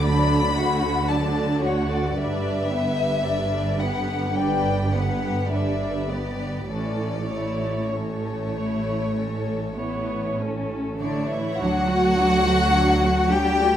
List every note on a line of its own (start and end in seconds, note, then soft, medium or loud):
0.00 2.13 D2 medium
0.00 2.13 D3 medium
0.00 0.52 A4 soft
0.00 0.52 D5 medium
0.06 0.54 F#3 soft
0.06 0.54 D4 soft
0.06 1.08 B5 medium
0.55 1.08 F#4 soft
0.55 1.10 F#4 soft
0.55 1.09 F#5 soft
0.59 1.11 A3 soft
1.08 1.64 F#3 soft
1.08 1.64 D4 soft
1.08 1.62 A4 soft
1.08 1.62 D5 soft
1.08 1.63 A5 medium
1.62 2.16 A3 soft
1.62 2.16 F#4 soft
1.62 1.89 C#5 medium
1.62 2.16 F#5 soft
1.90 2.17 D5 medium
2.15 6.68 G1 medium
2.15 6.68 G2 soft
2.15 2.66 G3 soft
2.15 2.66 D4 soft
2.15 2.67 B4 soft
2.15 2.67 D5 soft
2.15 3.80 E5 medium
2.69 3.24 B3 soft
2.69 3.24 G4 soft
2.69 3.23 B4 soft
3.23 3.78 G3 soft
3.23 3.79 D4 soft
3.23 3.79 B4 soft
3.23 3.79 D5 soft
3.78 4.35 B3 soft
3.78 4.35 G4 soft
3.78 4.34 B4 soft
3.78 4.35 F#5 medium
4.33 4.87 G3 soft
4.33 4.87 D4 soft
4.33 4.88 B4 soft
4.33 4.88 D5 soft
4.33 4.93 G5 medium
4.91 5.49 B3 soft
4.91 5.50 G4 soft
4.91 5.49 B4 soft
4.91 5.50 F#5 medium
5.49 6.08 G3 soft
5.49 6.08 D4 soft
5.49 6.08 B4 soft
5.49 6.08 D5 soft
5.49 6.08 E5 soft
6.08 6.68 B3 soft
6.08 6.68 G4 soft
6.08 6.69 B4 soft
6.08 6.67 D5 medium
6.67 11.34 A1 soft
6.67 10.95 A2 soft
6.67 7.24 E3 soft
6.67 7.25 C#4 soft
6.67 7.26 C#4 soft
6.67 7.26 A4 soft
6.67 7.88 D5 medium
7.28 7.89 A3 soft
7.28 7.90 E4 soft
7.33 7.93 E4 soft
7.33 7.92 C#5 soft
7.90 9.73 A3 soft
7.90 8.54 C#4 soft
7.90 8.54 A4 soft
7.90 10.38 C#5 soft
8.57 9.18 E4 soft
8.57 9.17 C#5 soft
9.17 9.74 C#4 soft
9.17 9.74 A4 soft
9.77 10.38 B3 soft
9.77 10.39 E4 soft
9.77 10.39 C#5 soft
10.37 10.99 C#4 soft
10.37 11.00 C#4 soft
10.37 11.00 A4 soft
10.98 11.27 D3 soft
10.98 11.58 A3 soft
10.98 11.29 D4 soft
10.98 11.29 E4 soft
10.98 11.60 C#5 soft
10.98 11.28 D5 soft
11.29 11.58 E3 soft
11.29 11.59 E4 soft
11.29 11.59 E5 medium
11.59 13.77 D2 medium
11.59 11.86 F#3 soft
11.59 13.30 F#3 medium
11.59 11.86 D4 soft
11.59 13.31 F#4 medium
11.59 13.31 F#5 loud
11.89 12.17 A3 medium
11.89 12.17 F#4 soft
12.18 12.45 F#3 medium
12.18 12.46 D4 soft
12.45 12.73 A3 soft
12.45 12.73 F#4 soft
12.74 13.00 F#3 medium
12.74 13.00 D4 medium
13.02 13.31 A3 soft
13.02 13.30 F#4 soft
13.30 13.59 F#3 soft
13.30 13.77 G3 medium
13.30 13.58 D4 soft
13.30 13.77 G4 medium
13.30 13.77 G5 medium
13.59 13.77 A3 soft
13.59 13.77 F#4 soft